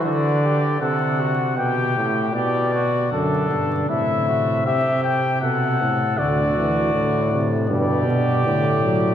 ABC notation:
X:1
M:4/4
L:1/8
Q:1/4=79
K:Dmix
V:1 name="Trumpet"
d2 f2 g2 d2 | A2 e2 e g f2 | d4 d4 |]
V:2 name="Trumpet"
F G A F G2 G F | D2 E F G2 A2 | F4 G4 |]
V:3 name="Trombone" clef=bass
D,2 C,2 B,, A,, B,,2 | D,2 C,6 | D, E, D, C, B,,2 D, F, |]
V:4 name="Bass trombone" clef=bass
z8 | F,, G,, A,,2 C,2 B,, A,, | D,,2 A,,2 G,, B,, A,,2 |]